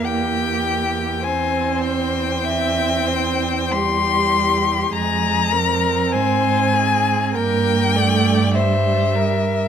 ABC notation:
X:1
M:4/4
L:1/8
Q:1/4=50
K:Cphr
V:1 name="Violin"
g2 a g3 c'2 | b2 a2 g2 =e2 |]
V:2 name="Violin"
G2 c2 =e c G2 | A B c A B =d c B |]
V:3 name="Viola"
B,2 C2 C2 G,2 | A, C3 B, =A, G,2 |]
V:4 name="Cello" clef=bass
=E,,8 | F,,2 A,,2 G,,4 |]